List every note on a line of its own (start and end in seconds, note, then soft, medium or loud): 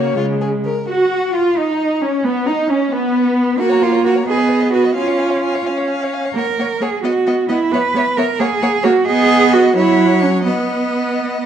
0.00 0.15 C#3 soft
0.00 0.17 A#3 medium
0.00 0.15 F#4 medium
0.00 0.15 C#5 medium
0.15 0.66 C#3 soft
0.15 0.67 G#3 soft
0.15 0.25 F4 medium
0.41 0.49 G#4 soft
0.65 0.88 A#4 medium
0.88 1.31 F#4 medium
0.88 1.37 F#4 soft
0.88 1.36 F#4 medium
1.33 1.56 F4 soft
1.33 1.59 F4 medium
1.33 1.58 F4 medium
1.33 1.60 F4 soft
1.57 2.01 D#4 medium
1.57 2.04 D#4 medium
1.57 2.06 D#4 medium
1.57 2.04 D#4 soft
2.02 2.10 C#4 medium
2.02 2.26 C#4 soft
2.02 2.26 C#4 medium
2.02 2.25 C#4 medium
2.24 2.48 B3 medium
2.24 2.49 B3 medium
2.46 2.71 D#4 medium
2.46 2.69 D#4 medium
2.46 2.70 D#4 medium
2.46 2.71 D#4 medium
2.70 2.94 C#4 soft
2.70 2.91 C#4 medium
2.70 2.94 C#4 soft
2.70 2.95 C#4 soft
2.92 3.61 B3 medium
2.92 3.59 B3 medium
3.59 4.20 A#3 medium
3.59 3.84 F#4 medium
3.59 3.71 A#4 medium
3.59 3.73 F#5 soft
3.70 3.83 C#5 soft
3.70 3.85 A#5 soft
3.82 4.05 F4 medium
3.82 3.94 A#4 soft
3.82 3.96 F#5 soft
3.92 4.04 C#5 soft
3.92 4.05 A#5 soft
4.05 4.13 F#4 medium
4.05 4.17 A#4 soft
4.05 4.19 F#5 soft
4.15 4.27 C#5 soft
4.15 4.27 A#5 soft
4.27 4.88 B3 medium
4.27 4.72 G#4 medium
4.27 4.39 B4 soft
4.27 4.41 D#5 soft
4.38 4.52 B4 soft
4.38 4.50 D#5 soft
4.48 4.62 B4 soft
4.48 4.64 D#5 soft
4.60 4.73 B4 soft
4.60 4.72 D#5 soft
4.73 4.96 F#4 medium
4.73 4.86 B4 soft
4.73 4.86 D#5 soft
4.84 4.96 B4 soft
4.84 4.94 D#5 soft
4.95 5.57 C#4 medium
4.95 5.64 F4 medium
4.95 5.09 F5 soft
4.95 5.10 G#5 soft
5.08 5.20 C#5 soft
5.08 5.21 F5 soft
5.19 5.32 F5 soft
5.19 5.32 G#5 soft
5.30 5.41 C#5 soft
5.30 5.43 F5 soft
5.42 5.56 F5 soft
5.42 5.55 G#5 soft
5.54 5.68 C#5 soft
5.54 5.67 F5 soft
5.66 6.27 C#4 medium
5.66 5.79 F5 soft
5.66 5.79 G#5 soft
5.77 5.89 C#5 soft
5.77 5.89 F5 soft
5.90 6.05 F5 soft
5.90 6.02 G#5 soft
6.01 6.15 C#5 soft
6.01 6.15 F5 soft
6.13 6.27 F5 soft
6.13 6.27 G#5 soft
6.25 6.36 C#5 soft
6.25 6.36 F5 soft
6.35 6.43 A#3 soft
6.35 6.83 A#4 medium
6.35 6.45 C#5 soft
6.35 6.45 F#5 soft
6.58 6.66 A#3 soft
6.58 6.69 C#5 soft
6.58 6.68 F#5 soft
6.81 6.89 A#3 soft
6.81 7.03 G#4 medium
6.81 6.89 C#5 soft
6.81 6.90 F#5 soft
7.03 7.11 B3 soft
7.03 7.49 F#4 medium
7.03 7.12 D#5 soft
7.03 7.12 F#5 soft
7.26 7.34 B3 soft
7.26 7.35 D#5 soft
7.26 7.35 F#5 soft
7.49 7.57 B3 soft
7.49 7.73 E4 medium
7.49 7.57 D#5 soft
7.49 7.59 F#5 soft
7.72 7.80 B3 medium
7.72 8.19 B4 medium
7.72 7.82 C#5 soft
7.72 7.82 E5 soft
7.95 8.03 B3 soft
7.95 8.04 C#5 soft
7.95 8.05 E5 soft
8.17 8.25 B3 soft
8.17 8.41 A#4 medium
8.17 8.26 C#5 soft
8.17 8.27 E5 medium
8.40 8.48 A#3 medium
8.40 8.86 G#4 medium
8.40 8.48 C#5 medium
8.40 8.48 F#5 medium
8.62 8.70 A#3 medium
8.62 8.70 C#5 medium
8.62 8.71 F#5 medium
8.83 8.92 A#3 medium
8.83 9.07 F#4 medium
8.83 8.91 C#5 medium
8.83 8.93 F#5 medium
9.07 9.72 B3 medium
9.07 9.55 G#4 loud
9.07 9.72 D#5 medium
9.07 9.73 F#5 medium
9.53 9.76 F#4 medium
9.76 10.48 F#3 medium
9.76 10.24 E4 medium
9.76 10.45 C#5 medium
9.76 10.45 F#5 medium
10.23 10.45 C#4 medium
10.46 11.46 B3 medium
10.46 11.46 D#5 soft
10.46 11.46 F#5 soft